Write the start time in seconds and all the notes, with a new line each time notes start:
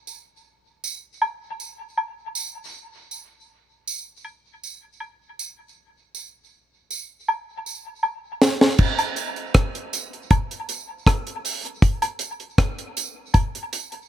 0.07 tambourine
0.84 tambourine
1.22 high woodblock
1.60 tambourine
1.97 high woodblock
2.35 tambourine
3.11 tambourine
3.87 tambourine
4.25 high woodblock
4.63 tambourine
5.00 high woodblock
5.39 tambourine
6.15 tambourine
6.90 tambourine
7.28 high woodblock
7.66 tambourine
8.03 high woodblock
8.42 snare, tambourine
8.61 snare
8.78 kick, crash
8.99 closed hi-hat, high woodblock
9.16 closed hi-hat, tambourine
9.36 closed hi-hat
9.54 kick, cross-stick, closed hi-hat
9.75 closed hi-hat
9.93 closed hi-hat, tambourine
10.13 closed hi-hat
10.31 kick, closed hi-hat, high woodblock
10.51 closed hi-hat
10.69 closed hi-hat, tambourine
11.07 kick, cross-stick, closed hi-hat, high woodblock
11.27 closed hi-hat
11.45 open hi-hat, tambourine
11.65 closed hi-hat
11.82 kick, closed hi-hat
12.02 closed hi-hat, high woodblock
12.19 closed hi-hat, tambourine
12.40 closed hi-hat
12.58 kick, cross-stick, closed hi-hat
12.79 closed hi-hat
12.97 closed hi-hat, tambourine
13.34 kick, closed hi-hat, high woodblock
13.55 closed hi-hat
13.73 closed hi-hat, tambourine
13.92 closed hi-hat